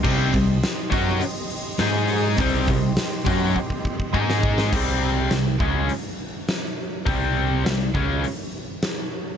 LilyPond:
<<
  \new Staff \with { instrumentName = "Analog synth pad" } { \time 4/4 \key c \minor \tempo 4 = 102 << { <g' c'''>2. <aes' ees'''>4 | <g' c'''>2. <aes' ees'''>4 | r1 | r1 | } \\ { ees''1~ | ees''2. ees''4 | r1 | r1 | } >> }
  \new Staff \with { instrumentName = "Distorted electric guitar" } { \clef bass \time 4/4 \key c \minor <c g c'>8 <c g>8 r8 <fis des' fis'>8 r4 <aes ees' aes'>4 | <c g c'>8 <c g>8 r8 <fis des' fis'>8 r4 <aes ees' aes'>4 | r1 | r1 | }
  \new Staff \with { instrumentName = "Distorted electric guitar" } { \clef bass \time 4/4 \key c \minor <c g c'>8 <c g>8 r8 <fis des' fis'>8 r4 <aes ees' aes'>4 | <c g c'>8 <c g>8 r8 <fis des' fis'>8 r4 <aes ees' aes'>4 | <c g c'>4 <c g>8 <des aes des'>8 r2 | <c g c'>4 <c g>8 <des aes des'>8 r2 | }
  \new Staff \with { instrumentName = "Overdriven electric guitar" } { \clef bass \time 4/4 \key c \minor <c g c'>8 <c g>8 r8 <fis des' fis'>8 r4 <aes ees' aes'>4 | <c g c'>8 <c g>8 r8 <fis des' fis'>8 r4 <aes ees' aes'>4 | <c g c'>4 <c g>8 <des aes des'>8 r2 | <c g c'>4 <c g>8 <des aes des'>8 r2 | }
  \new Staff \with { instrumentName = "Picked electric bass" } { \clef bass \time 4/4 \key c \minor c,8 c,8 r8 fis,8 r4 aes,4 | c,8 c,8 r8 fis,8 r4 aes,4 | c,4 c,8 des,8 r2 | c,4 c,8 des,8 r2 | }
  \new DrumStaff \with { instrumentName = "Drums" } \drummode { \time 4/4 <cymc bd>8 <hho bd>8 <hho sn>8 <hho bd>8 hho8 hho8 <hho sn>8 hho8 | <hho bd>8 <hho bd>8 <hho sn>8 <hho bd>8 bd16 bd16 bd16 bd16 bd16 sn16 bd16 sn16 | <cymc bd>4 <hho sn>8 bd8 hho4 <hho sn>4 | <hho bd>4 <hho sn>8 bd8 hho4 <hho sn>4 | }
>>